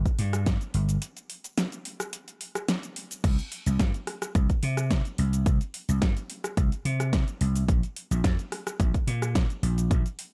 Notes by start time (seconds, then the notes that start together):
0.06 kick, closed hi-hat, shaker
0.19 G2, open hi-hat
0.33 cross-stick, closed hi-hat, shaker
0.46 kick, snare, closed hi-hat, shaker
0.61 closed hi-hat, shaker
0.74 G1, open hi-hat
0.89 closed hi-hat, shaker
1.02 closed hi-hat, shaker
1.17 closed hi-hat, shaker
1.30 open hi-hat
1.44 closed hi-hat, shaker
1.58 snare, closed hi-hat, shaker
1.72 closed hi-hat, shaker
1.85 open hi-hat
2.00 cross-stick, closed hi-hat, shaker
2.13 closed hi-hat, shaker
2.28 closed hi-hat, shaker
2.41 open hi-hat
2.55 cross-stick, closed hi-hat, shaker
2.68 snare, closed hi-hat, shaker
2.83 closed hi-hat, shaker
2.96 open hi-hat
3.11 open hi-hat, shaker
3.24 C2, kick, closed hi-hat, crash, shaker
3.39 closed hi-hat, shaker
3.52 open hi-hat
3.66 C2, closed hi-hat, shaker
3.80 G2, kick, snare, closed hi-hat, shaker
3.94 closed hi-hat, shaker
4.07 cross-stick, open hi-hat
4.22 cross-stick, closed hi-hat, shaker
4.35 C2, kick, closed hi-hat, shaker
4.50 kick, closed hi-hat, shaker
4.63 C3, open hi-hat
4.77 cross-stick, closed hi-hat, shaker
4.91 kick, snare, closed hi-hat, shaker
5.05 closed hi-hat, shaker
5.18 C2, open hi-hat
5.33 closed hi-hat, shaker
5.46 C2, kick, closed hi-hat, shaker
5.61 closed hi-hat, shaker
5.74 open hi-hat
5.89 C2, closed hi-hat, shaker
6.02 G2, kick, snare, closed hi-hat, shaker
6.17 closed hi-hat, shaker
6.30 open hi-hat
6.44 cross-stick, closed hi-hat, shaker
6.57 C2, kick, closed hi-hat, shaker
6.72 closed hi-hat, shaker
6.85 C3, open hi-hat
7.00 cross-stick, closed hi-hat, shaker
7.13 kick, snare, closed hi-hat, shaker
7.28 closed hi-hat, shaker
7.41 C2, open hi-hat
7.56 open hi-hat, shaker
7.69 A#1, kick, closed hi-hat, shaker
7.83 closed hi-hat, shaker
7.96 open hi-hat
8.11 A#1, closed hi-hat, shaker
8.24 F2, kick, snare, closed hi-hat, shaker
8.39 closed hi-hat, shaker
8.52 cross-stick, open hi-hat
8.67 cross-stick, closed hi-hat, shaker
8.80 A#1, kick, closed hi-hat, shaker
8.94 kick, closed hi-hat, shaker
9.07 A#2, open hi-hat
9.22 cross-stick, closed hi-hat, shaker
9.35 kick, snare, closed hi-hat, shaker
9.50 closed hi-hat, shaker
9.63 A#1, open hi-hat
9.78 closed hi-hat, shaker
9.91 A#1, kick, closed hi-hat, shaker
10.06 closed hi-hat, shaker
10.19 open hi-hat